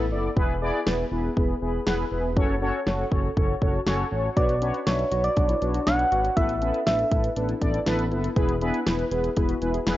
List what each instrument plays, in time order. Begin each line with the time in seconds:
Already playing: analog synth bass A1
0.12 analog synth bass F#1, analog polysynth B3 E4 A4 D5
0.37 analog synth bass E1, analog polysynth B3 E4 G#4 B4, kick
0.62 analog polysynth B3 E4 G#4 D5
0.87 analog synth bass E1, analog polysynth B3 E4 G#4 B4, snare
1.12 analog synth bass E1, analog polysynth B3 E4 G#4 B4
1.37 analog synth bass E1, analog polysynth B3 E4 G#4 B4, kick
1.62 analog synth bass E1, analog polysynth B3 E4 G#4 B4
1.87 analog synth bass E1, analog polysynth B3 E4 G#4 B4, snare
2.12 analog synth bass E1, analog polysynth B3 E4 G#4 B4
2.37 analog synth bass F#1, analog polysynth C#4 F#4 A4 C#5, kick
2.62 analog polysynth C#4 F#4 A4 C#5
2.87 analog synth bass F#1, analog polysynth C#4 F#4 A4 C#5, snare
3.12 analog synth bass F#1, analog polysynth C#4 F#4 A4 C#5, kick
3.37 analog synth bass F#1, analog polysynth C#4 F#4 A4 C#5, kick
3.62 analog synth bass F#1, analog polysynth C#4 F#4 A4 C#5, kick
3.87 analog synth bass F#1, analog polysynth C#4 F#4 A4 C#5, snare
4.12 analog synth bass A1, analog polysynth C#4 F#4 A4 C#5
4.37 analog synth bass B1, analog polysynth D4 F#4 B4 C#5, synth pluck F#4, soft synth lead D5, kick, closed hi-hat
4.49 closed hi-hat
4.61 synth pluck C#4, analog polysynth D4 F#4 B4 C#5, closed hi-hat
4.74 closed hi-hat
4.87 analog synth bass B1, analog polysynth D4 F#4 B4 E5, synth pluck D4, soft synth lead C#5, snare, closed hi-hat
4.99 closed hi-hat
5.12 analog synth bass B1, analog polysynth D4 F#4 B4 C#5, synth pluck F#4, closed hi-hat
5.24 soft synth lead D5, closed hi-hat
5.37 analog synth bass B1, analog polysynth D4 F#4 B4 C#5, synth pluck D4, kick, closed hi-hat
5.49 synth pluck E4, closed hi-hat
5.62 analog synth bass B1, synth pluck D4, analog polysynth D4 F#4 B4 C#5, closed hi-hat
5.74 synth pluck F#4, closed hi-hat
5.87 analog synth bass B1, analog polysynth D4 F#4 B4 C#5, synth pluck D4, soft synth lead F#5, snare, closed hi-hat
5.99 closed hi-hat
6.12 analog synth bass G#1, analog polysynth D4 F#4 B4 C#5, synth pluck F#4, closed hi-hat
6.24 synth pluck F#4, closed hi-hat
6.36 analog synth bass A1, analog polysynth B3 E4 A4 B4, synth pluck E4, soft synth lead E5, kick, closed hi-hat
6.49 closed hi-hat
6.62 analog polysynth B3 E4 A4 B4, synth pluck C#4, closed hi-hat
6.74 closed hi-hat
6.86 analog synth bass A1, analog polysynth B3 E4 A4 B4, synth pluck D4, soft synth lead E5, snare, closed hi-hat
6.99 closed hi-hat
7.11 analog synth bass A1, analog polysynth B3 E4 A4 B4, synth pluck E4, kick, closed hi-hat
7.24 closed hi-hat
7.37 analog synth bass A1, analog polysynth B3 E4 A4 B4, synth pluck D4, closed hi-hat
7.49 synth pluck E4, closed hi-hat
7.62 analog synth bass A1, analog polysynth B3 E4 A4 D5, synth pluck D4, kick, closed hi-hat
7.74 synth pluck E4, closed hi-hat
7.86 analog synth bass A1, analog polysynth B3 E4 A4 B4, synth pluck D4, snare, closed hi-hat
7.99 closed hi-hat
8.12 analog synth bass F#1, analog polysynth B3 E4 A4 B4, synth pluck E4, closed hi-hat
8.24 synth pluck E4, closed hi-hat
8.37 analog synth bass E1, analog polysynth B3 E4 G#4 B4, synth pluck G#4, kick, closed hi-hat
8.49 closed hi-hat
8.62 analog polysynth B3 E4 G#4 B4, synth pluck D4, closed hi-hat
8.74 closed hi-hat
8.87 analog synth bass E1, analog polysynth B3 E4 G#4 B4, synth pluck E4, snare, closed hi-hat
8.99 closed hi-hat
9.12 analog synth bass E1, analog polysynth B3 E4 G#4 B4, synth pluck G#4, closed hi-hat
9.24 closed hi-hat
9.37 analog synth bass E1, analog polysynth B3 E4 G#4 B4, synth pluck E4, kick, closed hi-hat
9.49 synth pluck F#4, closed hi-hat
9.62 analog synth bass E1, analog polysynth B3 E4 G#4 B4, synth pluck E4, closed hi-hat
9.74 synth pluck G#4, closed hi-hat
9.87 analog synth bass E1, analog polysynth B3 E4 G#4 B4, synth pluck E4, snare, closed hi-hat